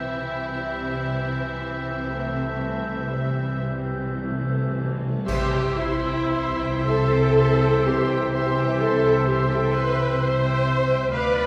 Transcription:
Already playing: double bass section C2, cello section C3, french horn section E3 C4, viola section E3 C4, clarinet C4, violin section E4 E5, oboe E5, flute G6
0.07 timpani C3
0.17 timpani C3
0.24 timpani C3
0.31 timpani C3
0.39 timpani C3
0.47 timpani C3
0.56 french horn section G3
0.72 timpani C3
0.81 timpani C3
0.89 timpani C3
0.97 timpani C3
1.04 timpani C3
1.09 timpani C3, french horn section E3
1.37 timpani C3
1.44 timpani C3
1.52 timpani C3
1.60 timpani C3
1.69 timpani C3
1.76 timpani C3
1.85 timpani C3
1.93 timpani C3
2.02 timpani C3
2.09 timpani C3, french horn section A3
2.17 timpani C3
2.26 timpani C3
2.34 timpani C3
2.58 timpani C3
2.74 timpani C3
2.82 timpani C3
2.91 timpani C3
2.98 timpani C3
3.07 timpani C3
3.11 french horn section G3
3.15 timpani C3
3.22 timpani C3
3.31 timpani C3
3.39 timpani C3
3.47 timpani C3
3.55 timpani C3
3.62 timpani C3, french horn section G3
3.72 timpani C3
3.81 timpani C3
3.90 timpani C3
3.97 timpani C3
4.07 timpani C3
4.14 timpani C3, french horn section A3
4.24 timpani C3
4.32 timpani C3
4.41 timpani C3
4.50 timpani C3
4.59 timpani C3
4.68 timpani C3
4.76 timpani C3
4.85 timpani C3
4.93 timpani C3
5.02 timpani C3
5.08 timpani C3
5.17 timpani C3
5.24 double bass section C2, timpani C3, cello section C3, french horn section E3 C4, viola section G4, violin section C5 E5 C6, clarinet C5, oboe E5, flute C6
5.28 concert bass drum, crash
5.52 violin section C5 E5 G5
5.77 viola section E4, violin section C5 E5 C6
6.05 violin section C5 E5 G5
6.32 violin section C5 E5 C6
6.61 violin section C5 E5 G5
6.87 viola section A4, violin section C5 E5 C6
7.12 violin section C5 E5 G5
7.36 violin section C5 E5 C6
7.61 violin section C5 E5 G5
7.85 viola section G4, violin section C5 E5 C6
8.09 violin section C5 E5 G5
8.33 viola section G4, violin section C5 E5 C6
8.58 violin section C5 E5 G5
8.81 viola section A4, violin section C5 E5 C6
9.05 violin section C5 E5 G5
9.29 viola section G4, violin section C5 E5 C6
9.51 viola section A4, violin section C5 E5 G5
9.74 viola section B4, violin section C5 E5 C6
9.97 violin section C5 E5 G5
10.20 viola section C5, violin section C5 E5 C6
10.43 violin section C5 E5 G5
10.66 violin section C5 E5 C6
10.87 violin section C5 E5 G5
11.09 double bass section D2, cello section D2, french horn section F3 B3, violin section B4 F5 D6, viola section B4, clarinet D5, oboe F5, flute B5
11.34 violin section D5 B5

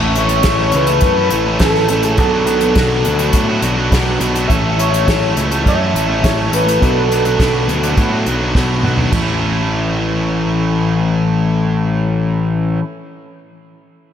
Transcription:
Already playing: picked electric bass A1, overdriven electric guitar A2 E3 A3 C#4 E4, distorted electric guitar A4, clean electric guitar E5
0.15 overdriven electric guitar E3 A3 C#4 E4, distorted electric guitar A4, clean electric guitar C#5, closed hi-hat
0.28 overdriven electric guitar A3 C#4 E4, distorted electric guitar A4, closed hi-hat
0.43 picked electric bass A1, overdriven electric guitar A2 E3 A3 C#4 E4, distorted electric guitar A4, kick, snare, closed hi-hat
0.57 distorted electric guitar A3 C#4 A4
0.72 picked electric bass C#2, overdriven electric guitar E3 A3 C#4 E4, closed hi-hat
0.76 clean electric guitar B4
0.86 overdriven electric guitar A3 C#4 E4, distorted electric guitar A4, closed hi-hat
1.01 picked electric bass F#2, overdriven electric guitar E3 A3 C#4, kick, closed hi-hat
1.05 overdriven electric guitar E4
1.16 overdriven electric guitar A3 C#4 E4, distorted electric guitar A4
1.30 picked electric bass A1, distorted electric guitar E3 A3 C#4 A4, closed hi-hat
1.44 overdriven electric guitar C#4 E4, distorted electric guitar A4
1.48 overdriven electric guitar A3
1.59 picked electric bass A1, overdriven electric guitar A2 E3 A3 C#4 E4, distorted electric guitar A4, clean electric guitar A4, kick, snare, closed hi-hat
1.75 snare
1.88 picked electric bass A1, overdriven electric guitar E3 A3 C#4 E4, distorted electric guitar A4, closed hi-hat
2.03 overdriven electric guitar E4, clean electric guitar G#4, distorted electric guitar A4, closed hi-hat
2.08 overdriven electric guitar A3 C#4
2.18 picked electric bass B1, overdriven electric guitar B2 F#3 B3, clean electric guitar A4, kick, closed hi-hat
2.22 overdriven electric guitar D4 F#4
2.47 overdriven electric guitar F#3 B3 D4 F#4, closed hi-hat
2.61 overdriven electric guitar B3 D4 F#4, closed hi-hat
2.75 picked electric bass B1, overdriven electric guitar B2 F#3 B3 D4 F#4, kick, snare, closed hi-hat
2.91 distorted electric guitar B3 D4 F#4
3.05 picked electric bass D2, overdriven electric guitar F#3 B3 D4 F#4, closed hi-hat
3.19 overdriven electric guitar B3 D4 F#4, closed hi-hat
3.33 picked electric bass A2, overdriven electric guitar F#3 B3 D4 F#4, kick, closed hi-hat
3.48 overdriven electric guitar B3 D4 F#4
3.61 picked electric bass B1, distorted electric guitar F#3 B3 D4 F#4, closed hi-hat
3.77 overdriven electric guitar B3 D4 F#4
3.91 picked electric bass B1, overdriven electric guitar B2 F#3 B3 D4 F#4, kick, snare, closed hi-hat
4.20 picked electric bass B1, overdriven electric guitar F#3 B3 D4 F#4, closed hi-hat
4.35 overdriven electric guitar B3 D4 F#4, closed hi-hat
4.48 picked electric bass A1, overdriven electric guitar A2 E3 A3 C#4 E4, distorted electric guitar A4, clean electric guitar E5, kick, closed hi-hat
4.77 overdriven electric guitar E3 A3 C#4 E4, distorted electric guitar A4, clean electric guitar C#5, closed hi-hat
4.90 overdriven electric guitar A3 C#4 E4, distorted electric guitar A4, closed hi-hat
5.07 picked electric bass A1, overdriven electric guitar A2 E3 A3 C#4 E4, distorted electric guitar A4, kick, snare, closed hi-hat
5.21 distorted electric guitar A3 C#4 A4
5.36 picked electric bass C#2, overdriven electric guitar E3 A3 C#4 E4, closed hi-hat
5.50 overdriven electric guitar A3 C#4 E4, distorted electric guitar A4, closed hi-hat
5.63 picked electric bass F#2, overdriven electric guitar E3 A3 C#4 E4, kick, closed hi-hat
5.68 clean electric guitar E5
5.78 overdriven electric guitar A3 C#4 E4, distorted electric guitar A4
5.94 picked electric bass A1, distorted electric guitar E3 A3 C#4 A4, closed hi-hat
6.07 overdriven electric guitar A3 C#4 E4, distorted electric guitar A4
6.21 picked electric bass A1, overdriven electric guitar A2 E3 A3 C#4 E4, clean electric guitar C#5, kick, snare, closed hi-hat
6.25 distorted electric guitar A3 A4
6.51 picked electric bass A1, overdriven electric guitar E3 A3 C#4 E4, clean electric guitar B4, closed hi-hat
6.55 distorted electric guitar A4
6.65 overdriven electric guitar A3 C#4 E4, distorted electric guitar A4, closed hi-hat
6.78 picked electric bass B1, overdriven electric guitar B2 F#3 B3 D4 F#4, kick
6.82 clean electric guitar A4, closed hi-hat
7.09 overdriven electric guitar F#3 B3 D4 F#4, closed hi-hat
7.25 overdriven electric guitar B3 D4 F#4, closed hi-hat
7.39 picked electric bass B1, overdriven electric guitar B2 F#3 B3 D4 F#4, kick, snare, closed hi-hat
7.53 distorted electric guitar B3 D4 F#4
7.67 picked electric bass D2, overdriven electric guitar F#3 B3 D4 F#4, closed hi-hat
7.83 overdriven electric guitar B3 D4 F#4, closed hi-hat
7.96 picked electric bass A2, overdriven electric guitar F#3 B3 D4 F#4, kick, closed hi-hat
8.13 overdriven electric guitar B3 D4 F#4
8.26 picked electric bass B1, distorted electric guitar F#3 B3 D4 F#4, closed hi-hat
8.40 overdriven electric guitar B3 D4 F#4
8.54 picked electric bass B1, overdriven electric guitar B2 F#3 B3 D4 F#4, kick, snare
8.83 picked electric bass B1, overdriven electric guitar F#3 B3 D4 F#4, mid tom
8.97 overdriven electric guitar B3 D4 F#4, floor tom
9.12 picked electric bass A1, overdriven electric guitar A2 E3 A3 C#4, kick, floor tom, crash
9.16 overdriven electric guitar E4

